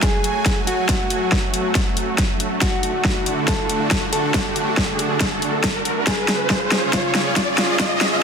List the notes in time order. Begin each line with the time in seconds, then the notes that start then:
Already playing: F#3 A3 F#4 G#5, riser
0.02 G#4, kick, snare, closed hi-hat
0.24 closed hi-hat
0.46 kick, snare, closed hi-hat
0.67 F#4, closed hi-hat
0.89 kick, snare, closed hi-hat
1.10 closed hi-hat
1.32 kick, snare
1.54 closed hi-hat
1.75 kick, snare, closed hi-hat
1.97 closed hi-hat
2.18 kick, snare, closed hi-hat
2.40 closed hi-hat
2.61 D3 D4 F#4, kick, snare, closed hi-hat
2.83 closed hi-hat
3.05 kick, snare
3.26 closed hi-hat
3.48 A4, kick, snare, closed hi-hat
3.69 closed hi-hat
3.91 kick, snare, closed hi-hat
4.13 A4, closed hi-hat
4.34 kick, snare, closed hi-hat
4.56 closed hi-hat
4.77 kick, snare
4.99 closed hi-hat
5.20 kick, snare, closed hi-hat
5.42 closed hi-hat
5.64 kick, snare, closed hi-hat
5.85 closed hi-hat
6.07 C#3 C#4 F4 G#4, kick, snare, closed hi-hat
6.28 snare, closed hi-hat
6.50 kick, snare
6.72 snare, closed hi-hat
6.93 F4, kick, snare, closed hi-hat
7.15 snare, closed hi-hat
7.36 kick, snare, closed hi-hat
7.58 F4, snare, closed hi-hat
7.79 kick, snare, closed hi-hat
8.01 snare, closed hi-hat